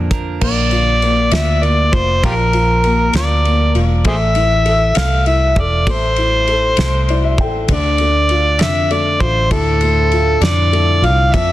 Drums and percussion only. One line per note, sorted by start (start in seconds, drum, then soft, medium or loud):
0.11 kick loud
0.11 closed hi-hat soft
0.41 kick loud
0.41 crash loud
0.71 ride soft
1.02 ride soft
1.31 snare loud
1.31 ride medium
1.63 ride soft
1.93 kick loud
1.93 ride soft
2.23 kick loud
2.23 ride medium
2.53 ride soft
2.84 ride soft
3.13 snare loud
3.13 ride medium
3.45 ride soft
3.75 ride soft
4.05 kick loud
4.05 ride medium
4.35 ride soft
4.66 ride soft
4.95 snare loud
4.95 ride medium
5.26 ride soft
5.56 kick loud
5.56 ride soft
5.87 kick loud
5.87 ride medium
6.16 ride soft
6.47 ride soft
6.77 snare loud
6.77 ride medium
7.09 ride soft
7.38 kick loud
7.38 ride soft
7.68 kick loud
7.68 ride medium
7.98 ride soft
8.29 ride soft
8.59 snare loud
8.59 ride medium
8.91 ride soft
9.20 kick loud
9.20 ride soft
9.51 kick loud
9.51 ride medium
9.81 ride soft
10.12 ride soft
10.42 snare loud
10.42 ride medium
10.73 ride soft
11.04 ride soft
11.34 kick loud
11.34 ride medium